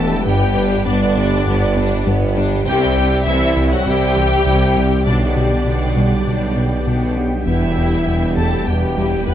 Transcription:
Already playing: E1 E2 E3 G3 A3 B3 G4 A4 B4 A5
0.26 G1 G2 G3 B3 G4 G5
0.56 G2 G3 D4 G4
0.86 G1 G2 D3 B3 D4 D5
1.16 G2 G3 D4
1.46 G1 G2 B3
1.76 G2 G3 B3 D4
2.07 G1 G2 G3 B3
2.36 G3 D4
2.66 C2 C3 G3 C4 E4 G4 E5 G5
2.97 C2 G3 C4 G4
3.26 C2 C3 E3 C4 E4 E5
3.57 C2 C3 G3 G4
3.71 F#3 F#4 F#5
3.86 C2 C3 G3 C4 E4 G4 G5
4.16 C2 E3 G3 G4
4.45 C2 C3 C4 E4
4.77 C3 G3 G4
5.05 B1 B2 D3 G3 B3 D4 D5 G5
5.36 B2 G3 B3 G4
5.66 B1 B2 B3 D4
5.96 B2 G3 B3
6.26 B1 B2 B3 D4
6.56 B2 G3 B3
6.85 B1 B2 G3 B3 D4
7.15 G3 B3 D4
7.46 E1 E2 E3 G3 B3 E4 G4 E5
7.77 E2 G3 E4
8.07 E1 E2 G3 B3
8.37 E2 E3 G3 A3 E4 A4 A5
8.67 E1 E2 G3 B3 G4 G5
8.97 E2 G3 E4
9.26 E1 E2 E3 B3 B4 B5

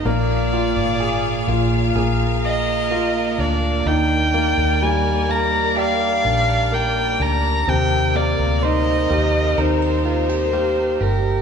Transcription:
Already playing: A#3 D#4 G4
0.05 A#1 A#2 A#3 F4 G#4 D5 F5
0.53 A#3 F4
0.76 G#1
1.00 G#4
1.48 A#1 A#3 F4
1.95 A#1 A#3 G#4 A#4
2.44 D#5
2.91 A#3 F4
3.38 D2 D4 D5
3.86 D#2 G3 D#4 A#4 D5 G5
4.34 A#3
4.58 D#2
4.82 G3 G#5
5.29 A#3 A#4 A#5
5.77 G4 D5 F5
6.25 A#1 D4
6.72 A#3 A#4 G5
7.20 D2 D4 A#5
7.67 D#2 C3 C4 D#4 A#4 G5
8.15 A#3 D5
8.39 D2
8.63 D#4 C5 D#5
9.10 D#2 A#3 G4
9.58 D#2 D#4 A#4 C5
9.82 C5
10.06 F4 C5
10.29 G4
10.53 A#3 G4
11.01 G1 G4 A#4

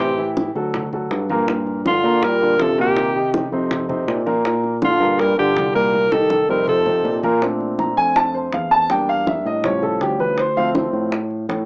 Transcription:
Already playing: A2 C3 E3 C4 G4 C5
0.00 high bongo
0.18 E3 E4 G4, high conga
0.37 high bongo, high conga
0.55 D2 F#3 F#4 A4, high bongo, high conga
0.74 high bongo, high conga, low conga
0.93 F#3 F#4 A4, high bongo, high conga, low conga
1.11 G2, high bongo, low bongo, high conga
1.30 A#2 A#3 A#4, high bongo, high conga
1.48 A#2 A#3 A#4, high bongo, high conga
1.67 high bongo, high conga
1.85 D3 D4 F4, high bongo, high conga
2.03 A#2 A#3 A#4, high bongo, high conga
2.23 G3 A#4, high bongo, high conga
2.41 D3 D4 F4, high conga
2.59 C3 F3 A4, high bongo, low bongo, high conga
2.78 A#2 D#3 A#3 G4 A#4, high bongo
2.96 high bongo, high conga
3.15 D#3 D#4 G4, high conga
3.34 high bongo, high conga
3.52 F2 C3 C4 D#4, high bongo, high conga
3.71 high bongo, high conga, low conga
3.89 C3 C4 D#4, high bongo, high conga, low conga
4.08 A#2, high bongo, low bongo, high conga
4.26 A#2 A#3 A#4, high bongo, high conga
4.45 A#2 A#3 A#4, high bongo, high conga
4.64 high bongo, high conga
4.82 D3 D4 F4, high bongo, high conga
5.00 G2 A#2 A#3 A#4, high bongo, high conga
5.19 G3 A#4, high bongo, high conga
5.37 D3 D4 F4 G4, high conga
5.56 C2, high bongo, low bongo, high conga
5.74 A#2 G3 A#3 A#4, high bongo
5.93 high bongo, high conga
6.12 D#3 D#4 G4 A4, high bongo, high conga
6.30 high conga
6.48 F2 C3 G3 C4 D#4 A#4, low bongo, high conga
6.68 F3 A4, high conga, low conga
6.86 C3 C4 D#4, low bongo, high conga, low conga
7.04 A#2, low bongo, high conga
7.23 A#2 A#3 A#4, low bongo, high conga
7.42 A3 C4 D4, high bongo, high conga
7.60 high bongo, high conga
7.79 A#5, high bongo, high conga
7.97 F2 G#5, high bongo, high conga
8.16 A5, high bongo, high conga
8.34 C5, high conga
8.52 E2 F5, high bongo, low bongo, high conga
8.71 A5, high bongo, high conga
8.89 G3 A#3 D4 G5, high bongo, high conga
9.09 F5, high conga
9.27 E5, high bongo, high conga
9.45 A2 D#5, high bongo, high conga
9.64 F3 G3 C#4 C#5, high bongo, high conga, low conga
9.83 A4, high bongo, high conga, low conga
10.01 D2 G4, high bongo, low bongo, high conga
10.20 B4, high bongo, high conga
10.38 C5, high bongo, high conga
10.56 F3 A3 C4 F5, high bongo, high conga
10.75 high bongo, high conga
10.93 A2, high bongo, high conga
11.12 high bongo, high conga
11.31 high conga
11.49 A2, high bongo, low bongo, high conga

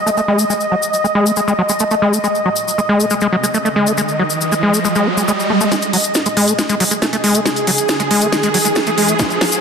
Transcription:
Already playing: D#5
0.06 A3, cabasa
0.17 A3, cabasa
0.28 G#3
0.39 A3, cabasa
0.50 G#3, cabasa
0.60 cabasa
0.72 F#3
0.82 cabasa
0.94 cabasa
1.04 G#3, cabasa
1.15 G#3
1.26 A3, cabasa
1.36 G#3, cabasa
1.48 G#3, cabasa
1.58 F#3
1.69 G#3, cabasa
1.79 A3, cabasa
1.91 A3, cabasa
2.02 G#3
2.13 A3, cabasa
2.24 G#3, riser, cabasa
2.35 cabasa
2.46 F#3
2.56 cabasa
2.68 cabasa
2.78 G#3, cabasa
2.89 G#3
3.00 A3, cabasa
3.10 G#3, cabasa
3.21 G#3, cabasa
3.32 F#3
3.43 G#3, cabasa
3.54 A3, cabasa
3.65 A3, cabasa
3.76 G#3
3.87 A3, cabasa
3.98 G#3, cabasa
4.09 cabasa
4.19 F#3
4.30 cabasa
4.41 cabasa
4.52 G#3, cabasa
4.63 G#3
4.74 A3, cabasa
4.85 G#3, cabasa
4.95 G#3, cabasa
5.06 D#4
5.17 G#3, cabasa
5.28 G#3, cabasa
5.40 cabasa
5.50 A3
5.61 A3, cabasa
5.72 G#3 G#4, snare, closed hi-hat, riser, cabasa
5.82 closed hi-hat, cabasa
5.93 F#3, open hi-hat
6.04 closed hi-hat, cabasa
6.14 snare, closed hi-hat, cabasa
6.26 G#3, closed hi-hat, cabasa
6.37 G#3, open hi-hat
6.48 A3, closed hi-hat, cabasa
6.59 G#3, snare, closed hi-hat, cabasa
6.69 G#3, closed hi-hat, cabasa
6.80 F#3, open hi-hat
6.91 G#3, closed hi-hat, cabasa
7.02 A3, snare, closed hi-hat, cabasa
7.13 A3, closed hi-hat, cabasa
7.24 G#3, open hi-hat
7.35 A3, closed hi-hat, cabasa
7.45 G#3, snare, closed hi-hat, cabasa
7.56 closed hi-hat, cabasa
7.67 F#3, open hi-hat
7.78 closed hi-hat, cabasa
7.89 snare, closed hi-hat, cabasa
8.00 G#3, closed hi-hat, cabasa
8.11 G#3, open hi-hat
8.21 A3, closed hi-hat, cabasa
8.32 G#3, snare, closed hi-hat, cabasa
8.43 G#3, closed hi-hat, cabasa
8.54 F#3, open hi-hat
8.65 G#3, closed hi-hat, cabasa
8.75 A3, snare, closed hi-hat, cabasa
8.87 A3, closed hi-hat, cabasa
8.98 G#3, open hi-hat
9.08 A3, closed hi-hat, cabasa
9.19 G#3, kick, snare, closed hi-hat, cabasa
9.30 closed hi-hat, cabasa
9.41 F#3, snare, open hi-hat
9.52 closed hi-hat, cabasa

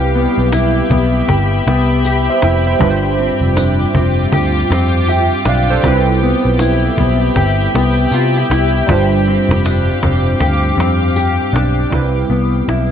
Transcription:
Already playing: C2 G3 C4 E4 G4 B4 E5 G5 B5
0.15 B3, cajon slap
0.36 B1, cajon slap
0.52 E4, cajon slap, tambourine
0.76 cajon slap
0.90 B1 B3, cajon bass
1.14 cajon slap
1.28 G1 G4, cajon bass
1.52 cajon slap
1.67 C2 B3, cajon slap
1.90 cajon slap
2.05 G4, cajon slap, tambourine
2.28 C5 E5, cajon slap
2.42 F1 E4 E5 G5, cajon slap
2.66 C5 E5, cajon slap
2.79 G1 G2 G3 D4 F4 G4 D6, cajon bass
2.84 B4
2.90 C5
3.03 cajon slap
3.19 C4, cajon slap
3.40 F1, cajon slap
3.56 D4, cajon slap, tambourine
3.80 cajon slap
3.95 F1 C4, cajon bass
4.19 cajon slap
4.32 D2 G4, cajon bass
4.56 cajon slap
4.70 F2 C4, cajon slap
4.94 cajon slap
5.08 G4 E5 G5, cajon slap, tambourine
5.31 cajon slap
5.45 B1 D4 D5 F5, cajon slap
5.69 A4 C5, cajon slap
5.83 C2 G3 C4 E4 G4 E5 G5 B5, cajon bass
5.88 B4
6.07 cajon slap
6.22 B3, cajon slap
6.44 B1, cajon slap
6.59 E4, cajon slap, tambourine
6.82 cajon slap
6.98 B1 B3, cajon bass
7.21 cajon slap
7.36 G1 G4, cajon bass
7.59 cajon slap
7.75 C2 B3, cajon slap
7.99 cajon slap
8.12 C3 F4, cajon slap, tambourine
8.37 G4, cajon slap
8.50 C2 E4, cajon slap
8.74 cajon slap
8.86 G1 G2 G3 D4 F4 G4 F5 D6, cajon bass
8.92 C5
9.13 cajon slap
9.28 C4, cajon slap
9.49 F1, cajon slap
9.65 D4, cajon slap, tambourine
9.89 cajon slap
10.02 F1 C4, cajon bass
10.26 cajon slap
10.40 D2 G4, cajon bass
10.64 cajon slap
10.77 F2 C4, cajon slap
11.03 cajon slap
11.16 G4, cajon slap, tambourine
11.40 cajon slap
11.53 B1 D4, cajon slap
11.79 cajon slap
11.90 C2 G3 C4 E4, cajon bass
11.95 B4
12.30 C2 B3, cajon slap
12.68 B1 E4, cajon slap

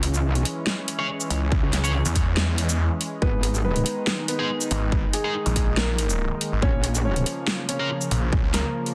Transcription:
Already playing: C#2 E3 G#3 C#4
0.03 closed hi-hat
0.14 shaker
0.26 C2
0.35 closed hi-hat
0.45 closed hi-hat
0.67 snare
0.88 closed hi-hat
0.99 C#4 G#4 C#5
1.21 shaker
1.30 C#2, closed hi-hat
1.52 kick
1.63 C#2
1.73 snare, closed hi-hat
1.84 C#4 G#4 C#5, shaker
2.06 E2, closed hi-hat, shaker
2.16 kick, closed hi-hat
2.37 snare
2.58 closed hi-hat
2.69 shaker
3.01 closed hi-hat
3.22 G#1 D#3 B3 D#4 B4, kick
3.43 closed hi-hat
3.54 shaker
3.65 B3 B4
3.76 closed hi-hat
3.86 closed hi-hat
4.07 snare
4.28 B3 B4, closed hi-hat
4.39 G#3 D#4 G#4
4.61 shaker
4.71 G#1, closed hi-hat
4.92 kick
5.13 G#3 G#4, closed hi-hat
5.24 G#3 D#4 G#4
5.46 A#1, closed hi-hat
5.56 kick, closed hi-hat
5.77 A#3 A#4, snare
5.98 closed hi-hat
6.10 shaker
6.41 closed hi-hat
6.52 G#1
6.62 A#1 C#3 F3 A#3 C#4 C#5, kick
6.84 closed hi-hat
6.95 shaker
7.05 C#4 C#5
7.16 closed hi-hat
7.26 closed hi-hat
7.47 snare
7.69 C#4 C#5, closed hi-hat
7.80 A#3 F4 A#4
8.01 shaker
8.11 A#1, closed hi-hat
8.33 kick
8.44 C#2
8.54 A#3 A#4, snare, closed hi-hat
8.86 closed hi-hat

